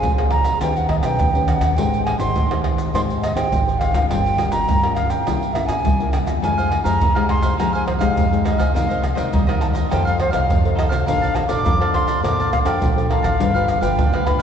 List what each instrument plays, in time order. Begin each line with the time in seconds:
Already playing: nylon-string guitar C#4 G#4 C5, flute G#5
0.02 upright bass C#2, nylon-string guitar F3, pandeiro, shaker, surdo
0.18 nylon-string guitar C#4 G#4 C5, pandeiro, tamborim, shaker
0.31 flute A#5, pandeiro, tamborim
0.44 pandeiro, shaker
0.61 upright bass D#2, nylon-string guitar D#3 C#4 G4 B4, flute G5, pandeiro, tamborim, shaker, surdo
0.77 flute F#5, pandeiro, shaker
0.89 flute D#5, pandeiro, tamborim, surdo
1.03 upright bass B1, nylon-string guitar C#4 G4 B4, flute G5, pandeiro, tamborim, shaker
1.19 upright bass D#2, nylon-string guitar D#3, pandeiro, shaker, surdo
1.35 nylon-string guitar C#4 G4 B4, pandeiro, shaker
1.48 flute F#5, pandeiro, tamborim, shaker
1.61 upright bass D#2, pandeiro, tamborim, shaker
1.76 upright bass G#1, nylon-string guitar G#3 D#4 G4 C5, flute G5, pandeiro, shaker, surdo
1.93 pandeiro, shaker
2.05 flute G#5, pandeiro, tamborim
2.19 upright bass G#1, nylon-string guitar D#4 G4 C5, flute C6, pandeiro, shaker
2.36 upright bass D#2, nylon-string guitar D#3, pandeiro, shaker, surdo
2.51 nylon-string guitar D#4 G4 C5, pandeiro, tamborim, shaker
2.64 pandeiro, tamborim
2.78 pandeiro, shaker
2.93 upright bass G#2, nylon-string guitar G#3 D#4 G4 C5, flute C6, pandeiro, tamborim, shaker, surdo
3.10 pandeiro, shaker
3.22 flute D#5, pandeiro, tamborim, shaker
3.35 upright bass D#2, nylon-string guitar D#4 G4 C5, flute G5, pandeiro, tamborim, shaker
3.51 upright bass G#1, nylon-string guitar D#3, pandeiro, shaker, surdo
3.67 nylon-string guitar D#4 G4 C5, pandeiro, shaker
3.79 flute F5, pandeiro, tamborim, shaker
3.93 upright bass D2, nylon-string guitar C#4 F4 A#4, pandeiro, tamborim, shaker
4.09 upright bass G1, nylon-string guitar G3, flute G5, pandeiro, shaker, surdo
4.26 pandeiro, shaker
4.38 nylon-string guitar C#4 F4 A#4, pandeiro, tamborim, shaker
4.51 upright bass G1, flute A#5, pandeiro, shaker
4.68 upright bass G2, nylon-string guitar G3, pandeiro, shaker, surdo
4.84 nylon-string guitar C#4 F4 A#4, pandeiro, tamborim, shaker
4.95 flute F5, pandeiro, tamborim, shaker
5.10 flute G5, pandeiro, shaker
5.27 upright bass C2, nylon-string guitar C3 A#3 C#4 E4, pandeiro, tamborim, shaker, surdo
5.43 pandeiro, shaker
5.53 nylon-string guitar A#3 C#4 E4, flute E5, pandeiro, tamborim, shaker
5.66 upright bass G2, flute G#5, pandeiro, tamborim, shaker
5.84 upright bass C2, nylon-string guitar G3, pandeiro, shaker, surdo
5.99 nylon-string guitar A#3 C#4 E4, pandeiro, shaker
6.12 flute G5, pandeiro, tamborim, shaker
6.26 upright bass E2, pandeiro, tamborim, shaker
6.42 upright bass F2, nylon-string guitar F3 G#3 D#4, cavaquinho D#4 G#4 C5 F5, flute G#5, pandeiro, shaker, surdo
6.57 cavaquinho G#4 C5 F5, pandeiro, shaker
6.70 muted cavaquinho stroke, pandeiro, tamborim
6.84 upright bass F2, nylon-string guitar G#3 D#4 G4, cavaquinho G#4 C5 F5, flute A#5, pandeiro, shaker
7.00 upright bass C2, nylon-string guitar C3, cavaquinho D#4 G#4 C5 F5, pandeiro, shaker, surdo
7.15 nylon-string guitar G#3 D#4 G4, cavaquinho G#4 C5 F5, pandeiro, tamborim, shaker
7.29 flute C6, pandeiro, tamborim
7.42 cavaquinho G#4 C5 F5, pandeiro, shaker
7.57 nylon-string guitar F3 G#3 D#4 G4, upright bass F3, cavaquinho D#4 G#4 C5 F5, flute A#5, pandeiro, tamborim, shaker, surdo
7.73 cavaquinho G#4 C5 F5, flute G#5, pandeiro, shaker
7.87 flute C5, muted cavaquinho stroke, pandeiro, tamborim, surdo
7.99 upright bass C2, nylon-string guitar G#3 D#4 G4, cavaquinho G#4 C5 F5, flute F5, pandeiro, tamborim, shaker
8.17 upright bass F2, nylon-string guitar C3, pandeiro, shaker, surdo
8.32 nylon-string guitar G#3 D#4 G4, pandeiro, shaker
8.44 cavaquinho D#4 G#4 C5 F5, flute D#5, pandeiro, tamborim, shaker
8.58 upright bass C#2, cavaquinho G#4 C5 F5, pandeiro, tamborim, shaker
8.74 upright bass C2, nylon-string guitar C4 D#4 A#4 D5, cavaquinho D#4 A#4 C5 D#5, flute F5, pandeiro, shaker, surdo
8.89 cavaquinho A#4 C5 D#5, pandeiro, shaker
9.02 muted cavaquinho stroke, pandeiro, tamborim, shaker
9.15 upright bass C2, nylon-string guitar D#4 A#4 D5, cavaquinho A#4 C5 D#5, pandeiro, shaker
9.32 upright bass D#2, nylon-string guitar G3, cavaquinho D#4 A#4 C5 D#5, pandeiro, shaker, surdo
9.47 nylon-string guitar D#4 A#4 D5, cavaquinho A#4 C5 D#5, pandeiro, tamborim, shaker
9.61 flute A5, pandeiro, tamborim, shaker
9.73 cavaquinho A#4 C5 D#5, pandeiro, shaker
9.90 upright bass F2, nylon-string guitar F3 D#4 A4 C5, cavaquinho D#4 A4 C5 F5, flute G5, pandeiro, tamborim, shaker, surdo
10.05 cavaquinho A4 C5 F5, flute F5, pandeiro, shaker
10.18 flute C5, muted cavaquinho stroke, pandeiro, tamborim
10.31 upright bass C2, nylon-string guitar D#4 A4 C5, cavaquinho A4 C5 F5, flute F5, pandeiro, tamborim, shaker
10.50 upright bass F2, nylon-string guitar C3, pandeiro, shaker, surdo
10.65 nylon-string guitar D#4 A4 C5, pandeiro, shaker
10.75 cavaquinho D#4 A4 C5 F5, flute D#5, pandeiro, tamborim, shaker
10.89 upright bass C2, cavaquinho A4 C5 F5, pandeiro, tamborim, shaker
11.06 upright bass A#1, nylon-string guitar A#3 D4 A4 C5, cavaquinho A#4 D5 F5 A5, flute F5, pandeiro, shaker, surdo
11.21 cavaquinho D5 F5 A5, pandeiro, shaker
11.35 flute A5, muted cavaquinho stroke, pandeiro, tamborim, shaker
11.48 upright bass A#1, nylon-string guitar D4 A4 C5, cavaquinho D5 F5 A5, flute D6, pandeiro, shaker
11.66 upright bass F2, nylon-string guitar F3, cavaquinho A#4 D5 F5 A5, pandeiro, shaker, surdo
11.80 nylon-string guitar D4 A4 C5, cavaquinho D5 F5 A5, pandeiro, tamborim, shaker
11.94 flute C6, pandeiro, tamborim
12.07 cavaquinho D5 F5 A5, pandeiro, shaker
12.23 upright bass A#2, nylon-string guitar A#3 D4 A4 C5, cavaquinho A#4 D5 F5 A5, flute D6, pandeiro, tamborim, shaker, surdo
12.40 cavaquinho D5 F5 A5, pandeiro, shaker
12.52 flute F5, muted cavaquinho stroke, pandeiro, tamborim, shaker, surdo
12.65 upright bass F2, nylon-string guitar D4 A4 C5, cavaquinho D5 F5 A5, flute G5, pandeiro, tamborim, shaker
12.81 upright bass A#1, nylon-string guitar F3, pandeiro, shaker, surdo
12.96 nylon-string guitar D4 A4 C5, pandeiro, shaker
13.10 cavaquinho A#4 D5 F5 A5, flute F5, pandeiro, tamborim
13.23 upright bass A1, cavaquinho D5 F5 A5, pandeiro, tamborim, shaker
13.39 upright bass G1, nylon-string guitar G3 D4 F4 B4, cavaquinho D4 G4 B4 F5, pandeiro, shaker, surdo
13.54 nylon-string guitar D4 F4 B4, cavaquinho G4 B4 F5, pandeiro, shaker
13.68 muted cavaquinho stroke, pandeiro, tamborim, shaker
13.81 upright bass G1, nylon-string guitar D4 F4 B4, cavaquinho G4 B4 F5, flute G5, pandeiro, shaker
13.97 upright bass D2, nylon-string guitar D3, cavaquinho D4 G4 B4 F5, pandeiro, shaker, surdo
14.13 cavaquinho G4 B4 F5, pandeiro, tamborim, shaker
14.26 nylon-string guitar D4 F4 B4, flute B5, pandeiro, tamborim, shaker
14.39 cavaquinho F5